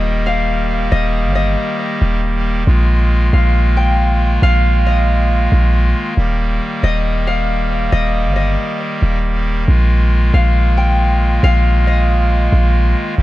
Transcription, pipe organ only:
0.00 6.14 D#3 medium
0.00 2.64 G3 medium
0.00 2.63 A#3 medium
0.00 2.64 G4 medium
2.67 6.14 G#3 medium
2.67 13.14 A#3 medium
2.67 6.14 F4 medium
6.18 13.22 D#3 medium
6.18 9.64 G3 medium
6.18 9.64 G4 medium
9.68 13.15 G#3 medium
9.68 13.15 F4 medium
13.18 13.22 G3 medium
13.18 13.22 A#3 medium
13.18 13.22 G4 medium

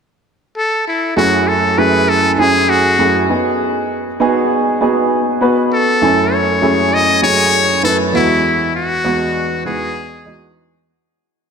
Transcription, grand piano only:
1.16 1.62 F#2 medium
1.16 1.62 A3 medium
1.16 1.62 C#4 medium
1.16 1.63 E4 medium
1.16 1.63 G#4 medium
1.77 2.23 F#2 medium
1.77 2.23 A3 medium
1.77 2.23 C#4 medium
1.77 2.23 E4 medium
1.77 2.24 G#4 medium
2.38 2.84 F#2 medium
2.38 2.84 A3 medium
2.38 2.84 C#4 medium
2.38 2.84 E4 medium
2.38 2.84 G#4 medium
2.98 3.29 F#2 medium
2.98 3.29 A3 medium
2.98 3.29 C#4 medium
2.98 3.29 E4 medium
2.98 3.29 G#4 medium
3.29 4.06 B3 medium
3.29 4.06 D#4 medium
3.29 4.06 F#4 medium
3.29 4.06 G#4 medium
4.20 4.66 B3 loud
4.20 4.66 D#4 medium
4.20 4.66 F#4 medium
4.20 4.66 G#4 loud
4.81 5.26 B3 medium
4.81 5.27 D#4 medium
4.81 5.27 F#4 medium
4.81 5.27 G#4 medium
5.41 5.87 B3 medium
5.41 5.87 D#4 medium
5.41 5.87 F#4 medium
5.41 5.87 B4 medium
6.01 6.47 F#2 medium
6.01 6.47 A3 medium
6.01 6.48 C#4 medium
6.01 6.48 E4 medium
6.01 6.48 G#5 medium
6.62 7.08 F#2 medium
6.62 7.08 A3 medium
6.62 7.08 C#4 medium
6.62 7.08 E4 medium
6.62 7.08 G#4 medium
7.22 7.68 F#2 medium
7.22 7.68 A3 medium
7.22 7.68 C#4 medium
7.22 7.69 E4 medium
7.22 7.69 G#4 medium
7.83 8.13 F#2 medium
7.83 8.14 A3 medium
7.83 8.14 C#4 medium
7.83 8.14 E4 medium
7.83 8.14 B4 medium
8.13 8.90 E2 medium
8.13 8.22 F#3 medium
8.13 8.90 B3 medium
8.13 8.91 F#4 medium
8.13 8.90 D#5 medium
8.19 8.93 G#3 medium
9.04 9.50 E2 medium
9.04 9.50 G#3 medium
9.04 9.51 B3 medium
9.04 9.51 D#4 medium
9.04 9.51 F#4 medium
9.65 10.11 E2 medium
9.65 10.11 G#3 medium
9.65 10.11 B3 medium
9.65 10.11 D#4 medium
9.65 10.12 F#4 medium
10.25 10.71 E2 medium
10.25 10.72 G#3 medium
10.25 10.72 B3 medium
10.25 10.72 D#4 medium
10.25 10.72 F#4 medium

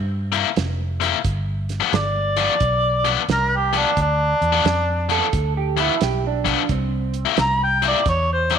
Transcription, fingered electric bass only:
0.00 0.43 G2 medium
0.57 1.12 F1 medium
1.25 1.80 G1 medium
1.93 2.48 G1 medium
2.61 3.16 B1 medium
3.28 3.84 C2 medium
3.97 4.33 D2 medium
4.41 4.61 E2 medium
4.65 5.20 F2 medium
5.33 5.88 D2 medium
6.02 6.57 B1 medium
6.69 7.25 C2 medium
7.38 7.93 C2 medium
8.06 8.59 E2 medium

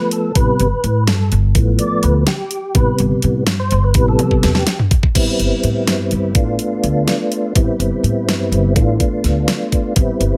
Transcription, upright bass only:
0.36 0.46 A1 loud
0.60 0.70 G1 medium
0.84 1.08 A2 medium
1.08 1.28 G2 medium
1.32 1.55 G1 medium
1.55 1.75 A1 medium
2.04 2.24 D2 medium
2.75 2.85 A1 loud
3.00 3.10 G1 medium
3.24 3.47 A2 medium
3.47 3.68 G2 medium
3.72 3.95 G1 loud
3.95 4.15 A1 medium
4.44 4.64 E2 medium
5.15 5.26 A1 medium
5.40 5.50 G1 medium
5.64 5.87 A2 medium
5.87 6.08 G2 medium
6.12 6.35 G1 medium
6.35 6.55 A1 medium
6.83 7.04 D2 medium
7.56 7.66 A1 medium
7.79 7.90 G1 medium
8.03 8.28 A2 medium
8.28 8.48 G2 medium
8.52 8.76 G1 medium
8.76 8.96 A1 medium
9.24 9.44 D2 medium
9.97 10.07 A1 medium
10.20 10.30 G1 medium

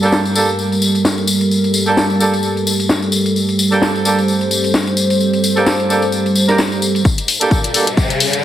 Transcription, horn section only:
0.03 0.20 A#3 medium
0.03 0.20 D4 medium
0.03 0.20 G4 medium
0.03 0.20 A4 medium
0.36 0.49 A#3 medium
0.36 0.49 D4 medium
0.36 0.49 G4 medium
0.36 0.49 A4 medium
1.87 2.05 A#3 medium
1.87 2.05 D4 medium
1.87 2.05 G4 medium
1.87 2.05 A4 medium
2.20 2.33 A#3 medium
2.20 2.33 D4 medium
2.20 2.33 G4 medium
2.20 2.33 A4 medium
3.72 3.90 A#3 medium
3.72 3.90 D4 medium
3.72 3.90 G4 medium
3.72 3.90 A4 medium
4.05 4.18 A#3 medium
4.05 4.18 D4 medium
4.05 4.18 G4 medium
4.05 4.18 A4 medium
5.57 5.74 A#3 medium
5.57 5.74 D4 medium
5.57 5.74 G4 medium
5.57 5.74 A4 loud
5.90 6.03 A#3 medium
5.90 6.03 D4 medium
5.90 6.03 G4 medium
5.90 6.03 A4 medium
6.49 6.59 A#3 medium
6.49 6.59 D4 medium
6.49 6.59 G4 medium
6.49 6.59 A#4 medium
7.41 7.59 A#3 medium
7.41 7.59 D4 medium
7.41 7.59 G4 medium
7.41 7.59 A4 medium
7.74 7.87 A#3 medium
7.74 7.87 D4 medium
7.74 7.87 G4 medium
7.74 7.87 A4 medium

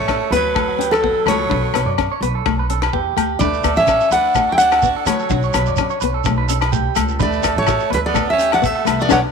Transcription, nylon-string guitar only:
0.09 0.23 C#4 medium
0.33 0.47 B3 medium
0.55 0.69 A3 medium
0.79 0.93 C#4 medium
1.04 1.17 B3 medium
1.27 1.41 A3 medium
1.50 1.64 D4 medium
1.75 1.89 B3 medium
1.98 2.12 C#4 medium
2.23 2.36 B3 medium
2.46 2.60 A3 medium
2.70 2.84 C#4 medium
2.94 3.07 B3 medium
3.17 3.31 A3 medium
3.41 3.55 D4 medium
3.65 3.78 B3 medium
3.89 4.02 C#4 medium
4.12 muted nylon-string guitar stroke medium
4.37 4.50 A3 medium
4.60 4.74 C#4 medium
4.84 4.97 B3 medium
5.08 5.21 A3 medium
5.31 5.45 D4 medium
5.56 5.69 B3 medium
5.81 5.94 C#4 medium
6.04 6.17 B3 medium
6.28 6.41 A3 medium
6.50 6.64 C#4 medium
6.73 6.87 A3 medium
6.96 7.10 A3 medium
7.20 7.34 D4 medium
7.43 7.57 B3 medium
7.68 7.82 F#4 medium
7.90 8.05 B3 medium
8.14 8.29 A3 medium
8.38 8.53 C#4 medium
8.62 8.76 B3 medium
8.85 9.00 A3 medium
9.09 9.18 B3 loud
9.09 9.18 C#4 loud
9.09 9.18 D4 loud

